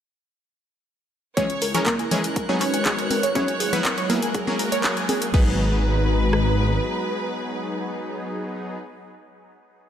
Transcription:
1.37 1.54 C#2 medium
1.37 1.45 E3 medium
1.37 1.45 G#3 medium
1.37 5.30 G#3 medium
1.37 1.45 C#4 medium
1.37 1.82 C#4 medium
1.37 2.35 C#4 medium
1.37 2.35 E4 medium
1.37 1.45 G#4 medium
1.37 1.46 G#4 medium
1.37 1.82 C#5 loud
1.37 1.82 C#5 medium
1.37 5.35 F#6 medium
1.37 kick loud
1.37 closed hi-hat medium
1.50 closed hi-hat soft
1.62 1.79 C#2 medium
1.62 1.67 A#4 medium
1.62 open hi-hat loud
1.74 1.86 E3 loud
1.74 1.86 G#3 medium
1.74 1.86 C#4 medium
1.74 1.86 A#4 loud
1.74 1.83 C#5 loud
1.74 closed hi-hat medium
1.74 low conga medium
1.86 2.04 C#2 loud
1.86 2.51 A#3 medium
1.86 2.51 A#4 loud
1.86 2.51 A#4 medium
1.86 kick loud
1.86 clap loud
1.86 closed hi-hat medium
1.86 high conga medium
1.99 2.08 G#5 medium
1.99 closed hi-hat soft
2.11 2.29 C#2 medium
2.11 2.19 E3 medium
2.11 2.19 G#3 medium
2.11 2.19 C#4 medium
2.11 2.19 G#4 loud
2.11 2.20 G#4 medium
2.11 open hi-hat loud
2.11 low conga medium
2.24 closed hi-hat medium
2.36 2.54 G#1 medium
2.36 3.34 D#4 medium
2.36 3.34 F#4 medium
2.36 2.41 A#4 medium
2.36 3.34 A#4 medium
2.36 3.34 B4 medium
2.36 kick loud
2.36 closed hi-hat medium
2.49 2.56 F#3 loud
2.49 2.56 B3 medium
2.49 2.56 D#4 medium
2.49 2.56 G#4 loud
2.49 2.57 C#5 loud
2.49 high conga medium
2.61 2.78 G#1 loud
2.61 3.26 C#4 medium
2.61 3.26 C#5 medium
2.61 3.26 C#5 loud
2.61 clap soft
2.61 open hi-hat loud
2.74 2.82 G#5 medium
2.74 closed hi-hat medium
2.85 3.03 G#1 medium
2.85 2.94 F#3 medium
2.85 2.94 B3 medium
2.85 2.94 D#4 medium
2.85 2.94 G#4 medium
2.85 2.95 G#4 medium
2.85 kick loud
2.85 clap loud
2.85 closed hi-hat medium
2.99 closed hi-hat soft
3.10 3.28 G#1 medium
3.10 3.16 A#4 medium
3.10 open hi-hat loud
3.10 high conga loud
3.23 3.32 C#5 loud
3.23 closed hi-hat medium
3.35 3.53 G#1 medium
3.35 3.43 F#3 medium
3.35 5.32 F#3 medium
3.35 3.43 B3 medium
3.35 4.00 C#4 medium
3.35 4.34 E4 medium
3.35 3.43 E4 medium
3.35 3.43 G#4 medium
3.35 4.00 C#5 medium
3.35 4.00 C#5 loud
3.35 kick loud
3.35 closed hi-hat medium
3.48 3.56 G#5 medium
3.48 closed hi-hat soft
3.60 3.78 G#1 medium
3.60 3.69 G#4 medium
3.60 open hi-hat loud
3.73 3.85 F#3 loud
3.73 3.85 B3 medium
3.73 3.85 E4 medium
3.73 3.85 B4 loud
3.73 closed hi-hat medium
3.73 low conga medium
3.85 4.02 G#1 loud
3.85 3.90 A#4 medium
3.85 kick loud
3.85 clap loud
3.85 closed hi-hat medium
3.85 high conga medium
3.98 4.06 C#5 loud
3.98 closed hi-hat soft
4.10 4.27 G#1 medium
4.10 4.18 F#3 medium
4.10 5.24 A#3 medium
4.10 4.18 B3 medium
4.10 4.18 E4 medium
4.10 4.18 G#4 medium
4.10 5.24 A#4 loud
4.10 5.24 A#4 medium
4.10 open hi-hat loud
4.22 4.31 G#5 medium
4.22 closed hi-hat medium
4.35 4.52 F#1 medium
4.35 5.33 A#3 medium
4.35 4.43 G#4 medium
4.35 kick loud
4.35 closed hi-hat medium
4.47 4.55 F#3 loud
4.47 4.55 A#3 medium
4.47 4.55 C#4 medium
4.47 4.55 G#4 loud
4.47 high conga medium
4.59 4.77 F#1 loud
4.59 4.65 A#4 medium
4.59 open hi-hat loud
4.72 4.80 C#5 loud
4.72 closed hi-hat medium
4.84 5.02 F#1 medium
4.84 4.92 F#3 medium
4.84 4.92 A#3 medium
4.84 4.92 C#4 medium
4.84 4.92 G#4 medium
4.84 kick loud
4.84 clap loud
4.84 open hi-hat medium
4.97 5.05 G#5 medium
4.97 closed hi-hat soft
5.09 5.26 F#1 medium
5.09 5.18 G#4 medium
5.09 open hi-hat loud
5.09 high conga loud
5.22 closed hi-hat medium
5.34 6.79 G#1 medium
5.34 8.77 F#3 medium
5.34 8.77 G#3 medium
5.34 8.77 B3 medium
5.34 8.77 D#4 medium
5.34 8.77 F#4 medium
5.34 5.57 G#4 medium
5.34 8.77 G#4 loud
5.34 8.77 B4 loud
5.34 8.77 B4 medium
5.34 8.77 A#5 medium
5.34 kick loud
5.34 crash medium
6.33 cross-stick medium

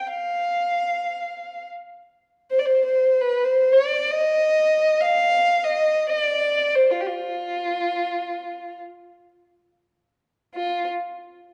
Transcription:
0.07 1.67 F5 medium
2.50 2.60 C5 medium
2.59 2.67 D5 medium
2.65 2.85 C5 medium
2.86 3.23 C5 medium
3.21 3.46 B4 medium
3.44 3.74 C5 medium
3.72 4.12 D5 medium
4.11 5.02 D#5 medium
5.00 5.65 F5 medium
5.64 6.08 D#5 medium
6.09 6.76 D5 medium
6.75 6.92 C5 medium
6.90 7.02 F4 medium
7.00 7.08 G4 medium
7.07 8.79 F4 medium
10.54 10.87 F4 medium

